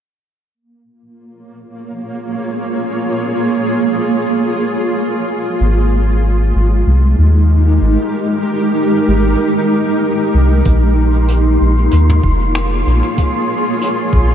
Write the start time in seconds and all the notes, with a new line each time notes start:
0.55 A#3
0.78 F4
1.03 C#5
1.14 G#4
5.60 G#1 G#3
6.11 D#4
6.38 G4
6.55 G#1
6.76 A#4
6.87 C2
7.18 D#2
7.81 G#1
9.08 G#1
10.34 C2
10.65 A#1 A#3 C6, kick, closed hi-hat
10.91 F4
11.29 closed hi-hat
11.40 G#4
11.61 A#1
11.91 D#2, closed hi-hat
12.10 C#5, mid tom
12.23 F1, kick
12.55 finger snap, closed hi-hat
12.87 A#1, closed hi-hat
13.18 kick, closed hi-hat
13.81 closed hi-hat
14.13 A#1, kick